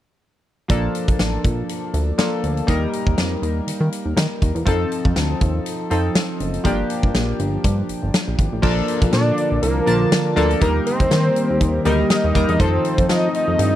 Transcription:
0.68 A#1 F3 A#3 D4 A4, kick, closed hi-hat
0.95 closed hi-hat
1.08 A#1, kick, closed hi-hat
1.19 A1, snare, closed hi-hat
1.44 A#1, kick, closed hi-hat
1.69 closed hi-hat
1.94 D2, closed hi-hat
2.18 F3 A#3 D4 A4, snare, closed hi-hat
2.44 D2, closed hi-hat
2.57 closed hi-hat
2.67 D#2 G3 A#3 D#4 A#4, kick, closed hi-hat
2.93 closed hi-hat
3.07 D#2, kick
3.18 F2, snare, closed hi-hat
3.42 D#2, closed hi-hat
3.67 D#3, closed hi-hat
3.81 D#3
3.92 closed hi-hat
4.06 D#2
4.17 D#3, snare, closed hi-hat
4.42 D#2, kick, closed hi-hat
4.55 E2, closed hi-hat
4.65 F2 F3 C4 D#4 A4, kick, closed hi-hat
4.92 closed hi-hat
5.05 F2, kick
5.16 D2, snare, closed hi-hat
5.41 D#2, kick, closed hi-hat
5.66 closed hi-hat
5.90 F2 F3 C4 D#4 A4, closed hi-hat
6.15 snare, closed hi-hat
6.40 F#1, closed hi-hat
6.54 closed hi-hat
6.64 G1 F3 A#3 D4 G4, kick, closed hi-hat
6.90 closed hi-hat
7.03 G1, kick
7.15 A#1, snare, closed hi-hat
7.39 G1, closed hi-hat
7.64 G2, kick, closed hi-hat
7.89 G1, closed hi-hat
8.03 G1
8.14 snare, closed hi-hat
8.27 A#1
8.38 G#1, kick, closed hi-hat
8.52 A1
8.62 A#1 D3 F3 A#3 D4 F4 A4, kick, crash
8.88 closed hi-hat
9.02 A#1, kick, closed hi-hat
9.13 A#2 D5, snare, closed hi-hat
9.38 closed hi-hat
9.52 A#1
9.62 C2 A#4, closed hi-hat
9.86 A#1 F3 A#3 D4 A5, closed hi-hat
10.12 snare, closed hi-hat
10.36 D2 F3 A#3 D4 A4, closed hi-hat
10.50 closed hi-hat
10.61 D#2 D#3 G3 A#3 D#4 G4 A#4, kick, closed hi-hat
10.86 C5, closed hi-hat
11.00 D#2, kick, closed hi-hat
11.11 D#3, snare, closed hi-hat
11.36 closed hi-hat
11.50 D#2
11.61 D#2, kick, closed hi-hat
11.85 D2 G3 A#3 D#4 A#4, closed hi-hat
12.10 D#5, snare, closed hi-hat
12.24 D#2
12.35 D#2 G3 A#3 D#4 A#4, kick, closed hi-hat
12.49 E2 D#5, closed hi-hat
12.59 F2 F3 A3 C4 D#4 F4 A4 C5, kick, closed hi-hat
12.85 closed hi-hat
12.98 F2, kick, closed hi-hat
13.09 F3 D#5, snare, closed hi-hat
13.34 D#5, closed hi-hat
13.48 F2
13.59 G2, closed hi-hat

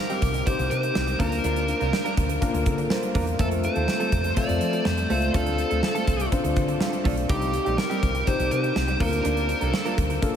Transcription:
Already playing: C4 D#4 G4 C5
0.00 A#4
0.10 G3 C4 D#4 G4, closed hi-hat
0.22 C2, muted clean electric guitar stroke, kick, closed hi-hat
0.34 muted clean electric guitar stroke, closed hi-hat
0.46 C4 D#4 G4 C5, muted clean electric guitar stroke, kick, closed hi-hat
0.59 C2, muted clean electric guitar stroke, closed hi-hat
0.71 C3 C5, closed hi-hat
0.83 muted clean electric guitar stroke, closed hi-hat
0.95 C2, muted clean electric guitar stroke, snare
1.07 muted clean electric guitar stroke, closed hi-hat
1.19 D2 A#3 D4 F4 A#4, kick, closed hi-hat
1.32 muted clean electric guitar stroke, closed hi-hat
1.44 D2 A#3 D4 F4 A#4, closed hi-hat
1.56 closed hi-hat
1.68 muted clean electric guitar stroke, closed hi-hat
1.80 C2 A#3 D4 F4 A#4, closed hi-hat
1.93 muted clean electric guitar stroke, snare
2.05 A#3 D4 F4 A#4, closed hi-hat
2.17 D2, muted clean electric guitar stroke, kick, closed hi-hat
2.29 muted clean electric guitar stroke, closed hi-hat
2.41 A#3 D4 F4 A#4, muted clean electric guitar stroke, kick, closed hi-hat
2.54 D2, muted clean electric guitar stroke, closed hi-hat
2.66 D3 A4, kick, closed hi-hat
2.78 muted clean electric guitar stroke, closed hi-hat
2.90 C5, muted clean electric guitar stroke, snare
3.02 muted clean electric guitar stroke, closed hi-hat
3.15 E2 A#3 D4 F4 A#4, kick, open hi-hat
3.27 muted clean electric guitar stroke, closed hi-hat
3.39 F2 A3 C4 F4 A4, kick, closed hi-hat
3.51 closed hi-hat
3.63 C5, muted clean electric guitar stroke, closed hi-hat
3.76 D#2 A3 C4 F4 A4, closed hi-hat
3.88 muted clean electric guitar stroke, snare
4.00 A3 C4 F4 A4, closed hi-hat
4.12 F2, muted clean electric guitar stroke, kick, closed hi-hat
4.24 muted clean electric guitar stroke, closed hi-hat
4.36 A3 C4 F4 A4 D5, muted clean electric guitar stroke, kick, closed hi-hat
4.48 F2, muted clean electric guitar stroke, closed hi-hat
4.61 F3, closed hi-hat
4.73 muted clean electric guitar stroke, closed hi-hat
4.85 F2 C5, muted clean electric guitar stroke, snare
4.97 muted clean electric guitar stroke, closed hi-hat
5.10 C#2 A3 C4 F4 A4, open hi-hat
5.22 muted clean electric guitar stroke, closed hi-hat
5.34 D2 A3 C4 D4 F4 A4, kick, closed hi-hat
5.46 closed hi-hat
5.58 muted clean electric guitar stroke, closed hi-hat
5.70 D2 A3 C4 F4 A4, closed hi-hat
5.83 muted clean electric guitar stroke, snare
5.95 A3 C4 F4 A4, closed hi-hat
6.07 C2, muted clean electric guitar stroke, kick, closed hi-hat
6.19 muted clean electric guitar stroke, closed hi-hat
6.31 C4 D4 F4 C5, muted clean electric guitar stroke, kick, closed hi-hat
6.44 D2, muted clean electric guitar stroke, closed hi-hat
6.56 D3, kick, closed hi-hat
6.68 muted clean electric guitar stroke, closed hi-hat
6.80 F5, muted clean electric guitar stroke, snare
6.92 muted clean electric guitar stroke, closed hi-hat
7.04 B1 A3 C4 F4 A4 D5, kick, open hi-hat
7.17 muted clean electric guitar stroke, closed hi-hat
7.29 C2 G3 C4 D#4 G4 C5, kick, closed hi-hat
7.42 closed hi-hat
7.53 muted clean electric guitar stroke, closed hi-hat
7.65 A#1 G3 C4 D#4 G4, closed hi-hat
7.78 A#4, muted clean electric guitar stroke, snare
7.90 G3 C4 D#4 G4, closed hi-hat
8.02 C2, muted clean electric guitar stroke, kick, closed hi-hat
8.15 muted clean electric guitar stroke, closed hi-hat
8.27 C4 D#4 G4 C5, muted clean electric guitar stroke, kick, closed hi-hat
8.39 C2, muted clean electric guitar stroke, closed hi-hat
8.51 C3 C5, closed hi-hat
8.63 muted clean electric guitar stroke, closed hi-hat
8.76 C2, muted clean electric guitar stroke, snare
8.88 muted clean electric guitar stroke, closed hi-hat
9.00 D2 A#3 D4 F4 A#4, kick, open hi-hat
9.12 muted clean electric guitar stroke, closed hi-hat
9.24 D2 A#3 D4 F4 A#4, closed hi-hat
9.37 closed hi-hat
9.49 muted clean electric guitar stroke, closed hi-hat
9.61 C2 A#3 D4 F4 A4 A#4, closed hi-hat
9.73 muted clean electric guitar stroke, snare
9.85 A#3 D4 F4 A#4, closed hi-hat
9.98 D2, muted clean electric guitar stroke, kick, closed hi-hat
10.10 muted clean electric guitar stroke, closed hi-hat
10.22 A#3 D4 F4 A4, muted clean electric guitar stroke, kick, closed hi-hat

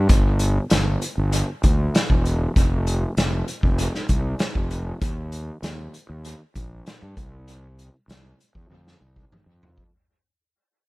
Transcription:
0.09 G1, kick, closed hi-hat
0.39 closed hi-hat
0.70 G1, snare, closed hi-hat
1.02 closed hi-hat
1.18 G1
1.32 closed hi-hat
1.63 D2, kick, closed hi-hat
1.95 snare, closed hi-hat
2.10 E1, kick
2.25 closed hi-hat
2.56 F1, kick, closed hi-hat
2.87 closed hi-hat
3.17 F1, snare, closed hi-hat
3.48 closed hi-hat
3.63 F1, kick
3.78 closed hi-hat
3.94 snare
4.09 C2, kick, closed hi-hat
4.39 snare, closed hi-hat
4.55 F1, kick
4.71 closed hi-hat
5.01 D#2, kick, closed hi-hat
5.32 closed hi-hat
5.63 D#2, snare, closed hi-hat
5.94 closed hi-hat
6.09 D#2
6.25 closed hi-hat
6.56 A#1, kick, closed hi-hat
6.86 snare, closed hi-hat
7.02 G2
7.17 C2, kick, closed hi-hat
7.48 closed hi-hat
7.79 closed hi-hat
8.08 C2, snare, closed hi-hat
8.40 closed hi-hat
8.55 E2, kick
8.70 F2, high tom
8.87 snare
9.01 C2
9.16 kick
9.32 mid tom
9.46 F2
9.63 floor tom
9.78 kick

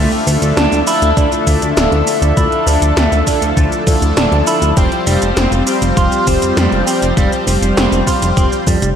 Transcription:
Already playing: D3 F3 A3 D4 E4 F4 A4 E5
0.12 closed hi-hat
0.27 D2, open hi-hat, shaker
0.42 D2, closed hi-hat, shaker
0.57 D2 D4, snare, closed hi-hat, shaker
0.72 D2, closed hi-hat, shaker
0.87 A3 D4 E4 F4 A4, open hi-hat, shaker
1.02 D2, closed hi-hat, shaker
1.17 D2 D4, kick, closed hi-hat, shaker
1.32 closed hi-hat, shaker
1.47 D2 A3, kick, open hi-hat, shaker
1.62 D2, closed hi-hat, shaker
1.77 D1 D4, snare, closed hi-hat, shaker
1.92 D2, closed hi-hat
2.07 open hi-hat, shaker
2.22 D2, closed hi-hat, shaker
2.37 D2 A3 D4 E4 F4 A4, kick, closed hi-hat, shaker
2.52 closed hi-hat
2.67 D2 D4, open hi-hat, shaker
2.82 D2, closed hi-hat, shaker
2.97 D2 A3, snare, closed hi-hat, shaker
3.12 D2, closed hi-hat, shaker
3.27 A3 D4 E4 F4 A4, kick, open hi-hat, shaker
3.42 D2, closed hi-hat, shaker
3.57 D2 A3, kick, closed hi-hat, shaker
3.72 closed hi-hat, shaker
3.87 D2 A3 D4 E4 F4 A4, kick, open hi-hat, shaker
4.02 D2, closed hi-hat, shaker
4.17 D1 D4, snare, closed hi-hat, shaker
4.32 D2, closed hi-hat
4.47 E4, open hi-hat, shaker
4.62 D2, closed hi-hat, shaker
4.77 F1 G3 C4 F4 G4 C5, kick, closed hi-hat, shaker
4.92 closed hi-hat
5.07 F1 G3, open hi-hat, shaker
5.22 F1, closed hi-hat, shaker
5.37 F1 C4, snare, closed hi-hat, shaker
5.52 F1, closed hi-hat, shaker
5.67 G3 C4 F4 G4 C5, open hi-hat, shaker
5.82 F1, closed hi-hat, shaker
5.97 F1 F4, kick, closed hi-hat, shaker
6.12 closed hi-hat, shaker
6.27 F1 C4, kick, open hi-hat, shaker
6.42 F1, closed hi-hat, shaker
6.57 F2 G3, snare, closed hi-hat, shaker
6.72 F1, closed hi-hat
6.87 C4, open hi-hat, shaker
7.02 F1, closed hi-hat, shaker
7.17 F1 G3 C4 F4 G4 C5, kick, closed hi-hat, shaker
7.32 closed hi-hat, shaker
7.47 F1, open hi-hat, shaker
7.62 F1, closed hi-hat, shaker
7.77 F1 C4, snare, closed hi-hat, shaker
7.92 F1, closed hi-hat, shaker
8.07 G3 C4 F4 G4 C5, kick, open hi-hat, shaker
8.22 F1, closed hi-hat, shaker
8.37 F1 C4, kick, closed hi-hat, shaker
8.52 closed hi-hat, shaker
8.67 F2 G3, kick, open hi-hat, shaker
8.82 F1, closed hi-hat, shaker

